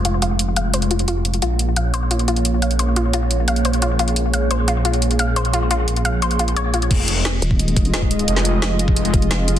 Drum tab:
CC |----------------|----------------|----------------|----------------|
HH |x-x-x-x-xxxxx-xx|x-x-x-x-xxxxx-xx|x-x-x-x-xxxxx-xx|x-x-x-x-xxxxx-xx|
SD |----------------|----------------|----------------|----------------|
BD |----------------|----------------|----------------|----------------|

CC |----------------|x---------------|----------------|
HH |x-x-xxx-xxxxx-xx|x-x-x-x-xxxxx-xx|x-x-x-x-xxxxx-x-|
SD |----------------|----o-------o---|-o--o-------o---|
BD |----------------|o------o--o--o--|-------o--o-----|